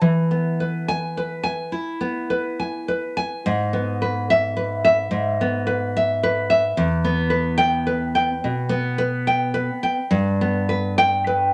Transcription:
nylon-string guitar
0.01 E3
0.31 B3
0.60 B4
0.88 G#5
1.17 B4
1.44 G#5
1.72 E4
2.01 B3
2.30 B4
2.60 G#5
2.88 B4
3.17 G#5
3.46 G#2
3.73 B3
4.02 B4
4.30 E5
4.57 B4
4.85 E5
5.11 G#2
5.41 B3
5.67 B4
5.97 E5
6.23 B4
6.50 E5
6.77 E2
7.04 B3
7.30 B4
7.58 G5
7.87 B4
8.15 G5
8.44 B2
8.69 B3
8.98 B4
9.27 G5
9.54 B4
9.83 G5
10.11 G2
10.41 B3
10.69 B4
10.98 G5
11.27 B4

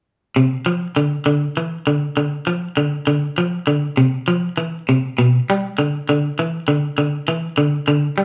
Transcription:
clean electric guitar
0.36 C3
0.66 F3
0.96 D3
1.26 D3
1.57 E3
1.87 D3
2.17 D3
2.47 F3
2.77 D3
3.07 D3
3.38 F3
3.67 D3
3.97 C3
4.28 F3
4.57 E3
4.89 C3
5.18 B2
5.50 G3
5.78 D3
6.09 D3
6.39 E3
6.68 D3
6.98 D3
7.28 E3
7.58 D3
7.88 D3
8.18 G3

